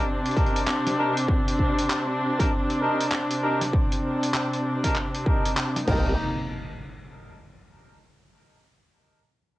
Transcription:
Already playing: string section C3 C4 D4
0.26 closed hi-hat
0.31 closed hi-hat
0.36 horn section D4 D#4 G4 A#4, kick, closed hi-hat
0.46 closed hi-hat
0.56 closed hi-hat
0.67 clap
0.87 snare, closed hi-hat
0.97 horn section D4 D#4 G4 A#4
1.17 closed hi-hat
1.28 kick
1.48 closed hi-hat
1.59 kick
1.78 closed hi-hat
1.90 clap
2.39 horn section D4 D#4 G4 A#4, kick, snare, closed hi-hat
2.70 closed hi-hat
2.81 horn section D4 D#4 G4 A#4
3.00 closed hi-hat
3.11 clap
3.31 closed hi-hat
3.43 horn section D4 D#4 G4 A#4
3.61 snare, closed hi-hat
3.73 kick
3.92 closed hi-hat
4.23 closed hi-hat
4.34 clap
4.53 closed hi-hat
4.84 horn section D4 D#4 G4 A#4, kick, snare, closed hi-hat
4.95 clap
5.15 closed hi-hat
5.26 horn section D4 D#4 G4 A#4, kick
5.45 closed hi-hat
5.57 clap
5.76 snare, closed hi-hat
5.87 wobble bass C2, string section C3 A#3 D#4, horn section D4 D#4 G4 A#4, kick, crash, impact

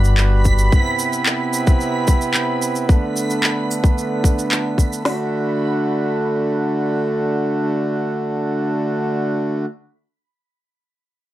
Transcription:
Already playing: upright bass G1, harmonium G3 F#4 B4, synth texture B5
0.04 cabasa
0.18 clap, cabasa
0.45 kick, cabasa
0.58 cabasa
0.72 harmonium C3 B3 E4, kick, cabasa
0.99 cabasa
1.13 cabasa
1.26 clap, cabasa
1.53 cabasa
1.67 kick, cabasa
1.81 cabasa
2.08 kick, cabasa
2.21 cabasa
2.34 clap, cabasa
2.62 cabasa
2.76 cabasa
2.89 harmonium D3 A3, kick, cabasa
3.17 cabasa
3.30 cabasa
3.43 clap, cabasa
3.71 cabasa
3.84 kick, cabasa
3.98 cabasa
4.24 kick, cabasa
4.39 cabasa
4.51 clap, cabasa
4.78 kick, cabasa
4.93 cabasa
5.05 harmonium D3 A3 F#4, snare, open hi-hat

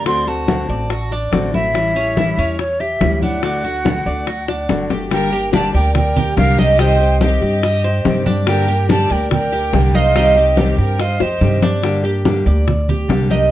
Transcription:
Already playing: upright bass D2
0.05 nylon-string guitar D3 A3 C4 F#4, cuban tres D4, flute C6, high bongo, high conga
0.27 nylon-string guitar A3 C4 F#4, cuban tres F#4, flute A5, high bongo, high conga
0.47 nylon-string guitar D3 A3 C4 F#4, high bongo, high conga
0.69 upright bass A1, nylon-string guitar A3 C4 F#4, cuban tres D5, high conga
0.89 cuban tres F#4, muted nylon-string guitar stroke, high bongo, high conga
1.11 cuban tres D4, high bongo, high conga
1.32 upright bass A1, nylon-string guitar D3 A3 C4 F#4, high bongo, low bongo, high conga
1.53 nylon-string guitar A3 C4 F#4, cuban tres E4, flute E5, high bongo, high conga
1.74 nylon-string guitar E3 G3 C#4 E4, high bongo, high conga
1.95 nylon-string guitar G3 C#4 E4, cuban tres C#4, high bongo, high conga
2.16 nylon-string guitar E3 G3 C#4 E4, cuban tres E4, high bongo, high conga
2.37 upright bass E2, nylon-string guitar G3 C#4 E4, cuban tres C#4, high conga
2.59 flute C#5, muted nylon-string guitar stroke, high bongo, high conga
2.80 cuban tres G4, flute E5, high bongo, high conga
3.01 upright bass D2, nylon-string guitar E3 G3 C#4 E4, high bongo, low bongo, high conga
3.22 nylon-string guitar G3 C#4 E4, cuban tres D4, flute F#5, high bongo, high conga
3.43 nylon-string guitar D3 A3 D4 F#4, cuban tres D4, high bongo, high conga
3.64 nylon-string guitar A3 D4 F#4, cuban tres F#4, high bongo, high conga
3.85 nylon-string guitar D3 A3 D4 F#4, high bongo, high conga
4.06 upright bass D2, nylon-string guitar A3 D4 F#4, cuban tres D5, high conga
4.27 cuban tres F#4, muted nylon-string guitar stroke, high bongo, high conga
4.48 cuban tres D4, high bongo, high conga
4.69 upright bass G1, nylon-string guitar D3 A3 D4 F#4, low bongo, high conga
4.90 nylon-string guitar A3 D4 F#4, cuban tres G4, low bongo, high conga
5.11 nylon-string guitar D3 G3 A#3 D4 G4, violin section A#4, flute G5, high bongo, high conga
5.32 nylon-string guitar A#3 D4 G4, cuban tres G4, high conga
5.53 nylon-string guitar D3 G3 A#3 D4 G4, violin section D5, flute A5, high bongo, high conga
5.74 upright bass D2, nylon-string guitar A#3 D4 G4, violin section A#4, cuban tres D5, flute G5, high bongo, high conga
5.95 violin section A#4, flute G5, muted nylon-string guitar stroke, high bongo, high conga, low conga
6.16 cuban tres G4, high bongo, high conga, low conga
6.37 upright bass C2, nylon-string guitar D3 G3 A#3 D4 G4, violin section A#4, flute F5, high bongo, low bongo, high conga
6.58 nylon-string guitar A#3 D4 G4, cuban tres D#4, violin section G4, flute D#5, high bongo, high conga
6.79 nylon-string guitar C3 D#3 G3 C4 G4, cuban tres D#4, violin section C5, flute G5, high bongo, high conga
7.00 nylon-string guitar G3 C4 G4, high conga
7.21 nylon-string guitar C3 D#3 G3 C4 G4, violin section G4, cuban tres G4, flute D#5, high bongo, high conga
7.42 upright bass G2, nylon-string guitar G3 C4 G4, high bongo, high conga
7.63 cuban tres D#5, muted nylon-string guitar stroke, high bongo, high conga
7.84 cuban tres C5, high bongo, high conga
8.05 upright bass G2, nylon-string guitar C3 D#3 G3 C4 G4, high bongo, low bongo, high conga
8.26 nylon-string guitar G3 C4 G4, cuban tres D4, high bongo, high conga
8.47 nylon-string guitar D3 G3 A#3 D4 G4, violin section A#4, flute G5, high bongo, high conga
8.68 nylon-string guitar A#3 D4 G4, cuban tres G4, high conga
8.89 nylon-string guitar D3 G3 A#3 D4 G4, violin section D5, flute A5, high bongo, high conga
9.10 upright bass D2, nylon-string guitar A#3 D4 G4, violin section A#4, cuban tres D5, flute G5, high bongo, high conga
9.31 violin section A#4, flute G5, muted nylon-string guitar stroke, high bongo, high conga, low conga
9.52 cuban tres G4, high bongo, high conga
9.73 upright bass C2, nylon-string guitar D3 G3 A#3 D4 G4, high bongo, low bongo, high conga
9.94 nylon-string guitar A#3 D4 G4, cuban tres D#4, violin section C5, flute F5, high bongo, high conga
10.15 nylon-string guitar C3 D#3 G3 C4 G4, cuban tres D#4, high bongo, high conga
10.36 nylon-string guitar G3 C4 G4, violin section G4, flute D#5, high conga
10.57 nylon-string guitar C3 D#3 G3 C4 G4, cuban tres G4, high bongo, high conga
10.78 upright bass G2, nylon-string guitar G3 C4 G4, violin section A#4, flute G5, high bongo, high conga
10.99 violin section C5, cuban tres D#5, flute F5, muted nylon-string guitar stroke, high bongo, high conga
11.20 upright bass F2, violin section G4, cuban tres C5, flute D#5, high bongo, high conga
11.41 upright bass G2, nylon-string guitar C3 D#3 G3 C4 G4, high conga
11.62 nylon-string guitar G3 C4 G4, cuban tres D4, low bongo, high conga
11.83 nylon-string guitar D3 G3 A#3 D4 G4, high bongo, high conga
12.04 nylon-string guitar A#3 D4 G4, cuban tres G4, high conga
12.25 nylon-string guitar D3 G3 A#3 D4 G4, high bongo, high conga
12.46 upright bass D2, nylon-string guitar A#3 D4 G4, cuban tres D5, high bongo, high conga
12.67 muted nylon-string guitar stroke, high bongo, high conga, low conga
12.89 cuban tres G4, high bongo, high conga, low conga
13.08 upright bass C2, nylon-string guitar D3 G3 A#3 D4 G4, high bongo, low bongo, high conga
13.30 nylon-string guitar A#3 D4 G4, cuban tres D#4, high bongo, high conga

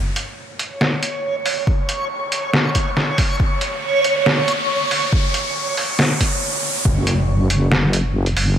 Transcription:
Already playing: synth texture C#5, riser
0.16 closed hi-hat
0.59 closed hi-hat
0.81 snare
1.03 closed hi-hat
1.46 open hi-hat
1.67 kick
1.89 closed hi-hat
2.32 closed hi-hat
2.53 snare
2.75 kick, closed hi-hat
2.97 snare
3.18 kick, open hi-hat
3.40 kick
3.61 closed hi-hat
4.04 closed hi-hat
4.26 snare
4.48 closed hi-hat
4.91 open hi-hat
5.13 kick
5.34 closed hi-hat
5.77 open hi-hat
5.99 snare
6.21 kick, closed hi-hat
6.85 wobble bass F#1, kick, impact
7.07 closed hi-hat
7.50 wobble bass F#1, closed hi-hat
7.72 snare
7.93 closed hi-hat
8.26 closed hi-hat
8.36 wobble bass F#1, open hi-hat

